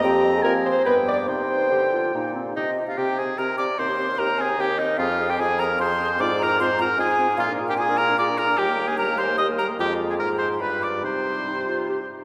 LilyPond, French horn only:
\new Staff \with { instrumentName = "French horn" } { \time 3/4 \key c \minor \tempo 4 = 148 g'8. aes'16 bes'8 c''8 b'8 d''8 | c''2~ c''8 r8 | c'8 c'8 c'8 c'8 c'8 c'8 | c'8 c'8 c'8 c'8 c'8 c'8 |
c'8 c'8 c'8 c'8 c'8 c'8 | c'8 c'8 c'8 c'8 c'8 c'8 | f'16 d'16 f'16 d'16 f'16 d'16 f'16 d'16 f'16 d'16 f'16 d'16 | g16 bes16 g16 bes16 g16 bes16 g16 bes16 g16 bes16 g16 bes16 |
aes2 g4 | g2~ g8 r8 | }